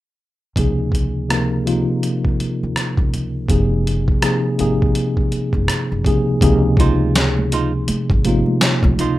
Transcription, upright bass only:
0, 0, Header, 1, 3, 480
1, 0, Start_track
1, 0, Key_signature, -5, "major"
1, 0, Tempo, 731707
1, 367, Time_signature, 4, 2, 24, 8
1, 6028, End_track
2, 0, Start_track
2, 0, Title_t, "Upright bass"
2, 0, Program_c, 0, 32
2, 372, Note_on_c, 0, 37, 83
2, 1210, Note_off_c, 0, 37, 0
2, 1727, Note_on_c, 0, 39, 68
2, 1801, Note_off_c, 0, 39, 0
2, 1957, Note_on_c, 0, 37, 79
2, 2035, Note_off_c, 0, 37, 0
2, 2061, Note_on_c, 0, 37, 61
2, 2259, Note_off_c, 0, 37, 0
2, 2292, Note_on_c, 0, 30, 85
2, 2697, Note_off_c, 0, 30, 0
2, 3015, Note_on_c, 0, 32, 84
2, 3215, Note_off_c, 0, 32, 0
2, 3633, Note_on_c, 0, 30, 82
2, 3712, Note_off_c, 0, 30, 0
2, 3882, Note_on_c, 0, 30, 77
2, 3958, Note_off_c, 0, 30, 0
2, 3972, Note_on_c, 0, 37, 72
2, 4174, Note_off_c, 0, 37, 0
2, 4212, Note_on_c, 0, 37, 106
2, 5143, Note_off_c, 0, 37, 0
2, 5317, Note_on_c, 0, 32, 86
2, 5519, Note_off_c, 0, 32, 0
2, 5796, Note_on_c, 0, 36, 99
2, 5874, Note_off_c, 0, 36, 0
2, 5895, Note_on_c, 0, 37, 75
2, 6028, Note_off_c, 0, 37, 0
2, 6028, End_track
3, 0, Start_track
3, 0, Title_t, "Muted upright bass strokes"
3, 1581, Note_on_c, 9, 29, 38
3, 1646, Note_off_c, 9, 29, 0
3, 3497, Note_on_c, 9, 29, 37
3, 3563, Note_off_c, 9, 29, 0
3, 5176, Note_on_c, 9, 29, 44
3, 5242, Note_off_c, 9, 29, 0
3, 6028, End_track
0, 0, End_of_file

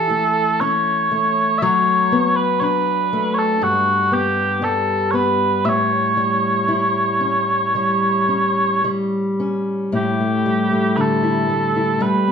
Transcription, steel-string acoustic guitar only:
0, 0, Header, 1, 2, 480
1, 0, Start_track
1, 0, Tempo, 1008403
1, 771, Time_signature, 4, 2, 24, 8
1, 2687, Tempo, 1048951
1, 3647, Tempo, 1098901
1, 4607, Tempo, 1045296
1, 5699, End_track
2, 0, Start_track
2, 0, Title_t, "Steel-string acoustic guitar"
2, 0, Program_c, 0, 25
2, 0, Note_on_c, 0, 52, 67
2, 0, Note_on_c, 0, 67, 58
2, 47, Note_on_c, 0, 57, 55
2, 62, Note_off_c, 0, 67, 0
2, 290, Note_on_c, 0, 61, 53
2, 529, Note_off_c, 0, 57, 0
2, 531, Note_on_c, 0, 57, 52
2, 772, Note_on_c, 0, 54, 78
2, 817, Note_off_c, 0, 52, 0
2, 820, Note_off_c, 0, 61, 0
2, 1010, Note_on_c, 0, 59, 55
2, 1024, Note_off_c, 0, 57, 0
2, 1244, Note_on_c, 0, 62, 57
2, 1489, Note_on_c, 0, 57, 54
2, 1721, Note_on_c, 0, 43, 68
2, 1774, Note_off_c, 0, 54, 0
2, 1775, Note_off_c, 0, 57, 0
2, 1960, Note_off_c, 0, 59, 0
2, 1960, Note_on_c, 0, 59, 55
2, 2199, Note_on_c, 0, 55, 50
2, 2438, Note_off_c, 0, 59, 0
2, 2443, Note_on_c, 0, 59, 51
2, 2684, Note_off_c, 0, 43, 0
2, 2689, Note_on_c, 0, 45, 69
2, 2734, Note_off_c, 0, 59, 0
2, 2901, Note_off_c, 0, 62, 0
2, 2925, Note_off_c, 0, 55, 0
2, 2927, Note_on_c, 0, 55, 47
2, 3162, Note_on_c, 0, 64, 56
2, 3401, Note_on_c, 0, 61, 48
2, 3647, Note_off_c, 0, 55, 0
2, 3649, Note_on_c, 0, 55, 48
2, 3878, Note_off_c, 0, 61, 0
2, 3884, Note_on_c, 0, 61, 45
2, 4126, Note_off_c, 0, 55, 0
2, 4128, Note_on_c, 0, 55, 45
2, 4364, Note_off_c, 0, 61, 0
2, 4369, Note_on_c, 0, 61, 46
2, 4595, Note_off_c, 0, 45, 0
2, 4599, Note_on_c, 0, 45, 58
2, 4601, Note_off_c, 0, 64, 0
2, 4603, Note_on_c, 0, 64, 48
2, 4655, Note_off_c, 0, 61, 0
2, 4727, Note_on_c, 0, 57, 39
2, 4740, Note_off_c, 0, 55, 0
2, 4845, Note_on_c, 0, 55, 42
2, 4961, Note_off_c, 0, 57, 0
2, 4963, Note_on_c, 0, 57, 41
2, 5080, Note_on_c, 0, 50, 51
2, 5193, Note_off_c, 0, 64, 0
2, 5199, Note_on_c, 0, 64, 47
2, 5319, Note_off_c, 0, 57, 0
2, 5320, Note_on_c, 0, 57, 44
2, 5438, Note_off_c, 0, 64, 0
2, 5443, Note_on_c, 0, 64, 48
2, 5552, Note_off_c, 0, 50, 0
2, 5554, Note_off_c, 0, 55, 0
2, 5554, Note_on_c, 0, 55, 62
2, 5555, Note_off_c, 0, 64, 0
2, 5557, Note_on_c, 0, 62, 51
2, 5611, Note_off_c, 0, 45, 0
2, 5677, Note_off_c, 0, 57, 0
2, 5679, Note_on_c, 0, 59, 46
2, 5699, Note_off_c, 0, 55, 0
2, 5699, Note_off_c, 0, 59, 0
2, 5699, Note_off_c, 0, 62, 0
2, 5699, End_track
0, 0, End_of_file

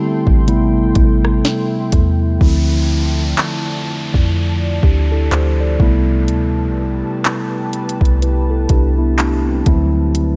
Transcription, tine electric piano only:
0, 0, Header, 1, 2, 480
1, 0, Start_track
1, 0, Tempo, 967742
1, 1194, Time_signature, 4, 2, 24, 8
1, 5139, End_track
2, 0, Start_track
2, 0, Title_t, "Tine electric piano"
2, 0, Program_c, 0, 4
2, 0, Control_c, 0, 64, 127
2, 0, Note_on_c, 0, 50, 85
2, 0, Note_on_c, 0, 55, 82
2, 0, Note_on_c, 0, 57, 81
2, 0, Note_on_c, 0, 59, 60
2, 0, Note_on_c, 0, 60, 78
2, 0, Note_on_c, 0, 64, 95
2, 0, Note_on_c, 0, 67, 92
2, 228, Note_off_c, 0, 55, 0
2, 229, Note_off_c, 0, 57, 0
2, 232, Note_on_c, 0, 48, 93
2, 233, Note_off_c, 0, 50, 0
2, 234, Note_on_c, 0, 55, 86
2, 235, Note_on_c, 0, 57, 90
2, 237, Note_off_c, 0, 60, 0
2, 238, Note_off_c, 0, 67, 0
2, 239, Note_off_c, 0, 59, 0
2, 239, Note_on_c, 0, 59, 87
2, 240, Control_c, 0, 64, 0
2, 241, Note_off_c, 0, 64, 0
2, 241, Note_on_c, 0, 64, 105
2, 335, Control_c, 0, 64, 127
2, 1123, Note_off_c, 0, 48, 0
2, 1125, Note_off_c, 0, 55, 0
2, 1125, Note_off_c, 0, 57, 0
2, 1127, Note_off_c, 0, 59, 0
2, 1128, Note_off_c, 0, 64, 0
2, 1194, Note_on_c, 0, 50, 76
2, 1197, Note_on_c, 0, 53, 69
2, 1200, Note_on_c, 0, 57, 68
2, 1201, Note_on_c, 0, 60, 71
2, 1202, Control_c, 0, 64, 0
2, 1203, Note_on_c, 0, 64, 88
2, 1286, Control_c, 0, 64, 127
2, 2085, Note_off_c, 0, 50, 0
2, 2086, Note_off_c, 0, 53, 0
2, 2087, Note_off_c, 0, 57, 0
2, 2088, Note_off_c, 0, 60, 0
2, 2089, Note_off_c, 0, 64, 0
2, 2399, Note_on_c, 0, 67, 62
2, 2403, Note_on_c, 0, 62, 50
2, 2529, Note_off_c, 0, 67, 0
2, 2531, Note_off_c, 0, 62, 0
2, 2538, Note_on_c, 0, 69, 66
2, 2541, Note_on_c, 0, 64, 57
2, 2632, Note_off_c, 0, 69, 0
2, 2633, Note_off_c, 0, 64, 0
2, 2639, Note_on_c, 0, 72, 64
2, 2641, Note_on_c, 0, 67, 55
2, 2769, Note_off_c, 0, 72, 0
2, 2770, Note_off_c, 0, 67, 0
2, 2780, Note_on_c, 0, 74, 57
2, 2782, Note_on_c, 0, 69, 49
2, 2875, Note_on_c, 0, 47, 68
2, 2877, Note_on_c, 0, 55, 84
2, 2879, Note_on_c, 0, 57, 78
2, 2880, Control_c, 0, 64, 0
2, 2882, Note_on_c, 0, 59, 83
2, 2884, Note_on_c, 0, 64, 99
2, 2907, Note_on_c, 0, 48, 83
2, 2912, Note_off_c, 0, 47, 0
2, 2979, Control_c, 0, 64, 127
2, 3005, Note_off_c, 0, 74, 0
2, 3006, Note_off_c, 0, 69, 0
2, 3766, Note_off_c, 0, 55, 0
2, 3767, Note_off_c, 0, 57, 0
2, 3769, Note_off_c, 0, 59, 0
2, 3770, Note_off_c, 0, 64, 0
2, 3781, Note_off_c, 0, 48, 0
2, 4078, Note_on_c, 0, 71, 60
2, 4082, Note_on_c, 0, 64, 53
2, 4209, Note_off_c, 0, 71, 0
2, 4211, Note_off_c, 0, 64, 0
2, 4216, Note_on_c, 0, 69, 63
2, 4220, Note_on_c, 0, 64, 55
2, 4311, Note_off_c, 0, 69, 0
2, 4313, Note_off_c, 0, 64, 0
2, 4318, Note_on_c, 0, 67, 66
2, 4321, Note_on_c, 0, 62, 60
2, 4448, Note_off_c, 0, 67, 0
2, 4450, Note_off_c, 0, 62, 0
2, 4456, Note_on_c, 0, 64, 73
2, 4460, Note_on_c, 0, 59, 59
2, 4551, Note_off_c, 0, 64, 0
2, 4553, Note_off_c, 0, 59, 0
2, 4558, Note_on_c, 0, 62, 68
2, 4561, Note_on_c, 0, 57, 55
2, 4689, Note_off_c, 0, 62, 0
2, 4690, Note_off_c, 0, 57, 0
2, 4697, Note_on_c, 0, 60, 57
2, 4701, Note_on_c, 0, 55, 47
2, 4793, Note_on_c, 0, 50, 82
2, 4794, Note_off_c, 0, 60, 0
2, 4795, Note_on_c, 0, 54, 78
2, 4797, Note_on_c, 0, 57, 82
2, 4800, Control_c, 0, 64, 0
2, 4800, Note_on_c, 0, 60, 79
2, 4802, Note_on_c, 0, 64, 99
2, 4896, Control_c, 0, 64, 127
2, 4925, Note_off_c, 0, 55, 0
2, 5139, Note_off_c, 0, 50, 0
2, 5139, Note_off_c, 0, 54, 0
2, 5139, Note_off_c, 0, 57, 0
2, 5139, Note_off_c, 0, 60, 0
2, 5139, Note_off_c, 0, 64, 0
2, 5139, End_track
0, 0, End_of_file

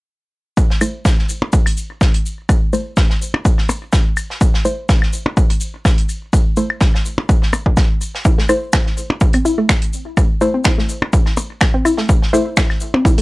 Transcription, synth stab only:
0, 0, Header, 1, 2, 480
1, 0, Start_track
1, 0, Key_signature, 0, "minor"
1, 0, Tempo, 480000
1, 571, Time_signature, 4, 2, 24, 8
1, 13218, End_track
2, 0, Start_track
2, 0, Title_t, "Synth stab"
2, 0, Program_c, 0, 62
2, 811, Note_on_c, 0, 57, 77
2, 812, Note_on_c, 0, 64, 70
2, 812, Note_on_c, 0, 72, 87
2, 884, Note_off_c, 0, 57, 0
2, 884, Note_off_c, 0, 64, 0
2, 884, Note_off_c, 0, 72, 0
2, 2731, Note_on_c, 0, 57, 78
2, 2731, Note_on_c, 0, 64, 71
2, 2731, Note_on_c, 0, 72, 86
2, 2804, Note_off_c, 0, 57, 0
2, 2804, Note_off_c, 0, 64, 0
2, 2804, Note_off_c, 0, 72, 0
2, 4651, Note_on_c, 0, 57, 76
2, 4651, Note_on_c, 0, 64, 73
2, 4651, Note_on_c, 0, 72, 85
2, 4724, Note_off_c, 0, 57, 0
2, 4724, Note_off_c, 0, 64, 0
2, 4724, Note_off_c, 0, 72, 0
2, 6571, Note_on_c, 0, 57, 79
2, 6571, Note_on_c, 0, 64, 72
2, 6571, Note_on_c, 0, 72, 85
2, 6644, Note_off_c, 0, 57, 0
2, 6644, Note_off_c, 0, 64, 0
2, 6644, Note_off_c, 0, 72, 0
2, 8491, Note_on_c, 0, 57, 77
2, 8491, Note_on_c, 0, 64, 73
2, 8491, Note_on_c, 0, 72, 86
2, 8564, Note_off_c, 0, 57, 0
2, 8564, Note_off_c, 0, 64, 0
2, 8564, Note_off_c, 0, 72, 0
2, 10411, Note_on_c, 0, 64, 73
2, 10412, Note_on_c, 0, 57, 79
2, 10412, Note_on_c, 0, 72, 86
2, 10484, Note_off_c, 0, 57, 0
2, 10484, Note_off_c, 0, 64, 0
2, 10484, Note_off_c, 0, 72, 0
2, 12331, Note_on_c, 0, 57, 80
2, 12331, Note_on_c, 0, 64, 74
2, 12331, Note_on_c, 0, 72, 87
2, 12404, Note_off_c, 0, 57, 0
2, 12404, Note_off_c, 0, 64, 0
2, 12404, Note_off_c, 0, 72, 0
2, 13218, End_track
0, 0, End_of_file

